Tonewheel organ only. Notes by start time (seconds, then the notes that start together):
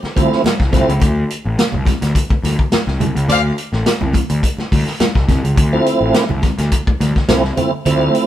0.16 F3 A3 C4 E4
0.72 F3 A3 C4 E4
5.73 F3 A3 C4 E4
7.28 F3 A3 C4 E4
7.57 F3 A3 C4 E4
7.86 F3 A3 C4 E4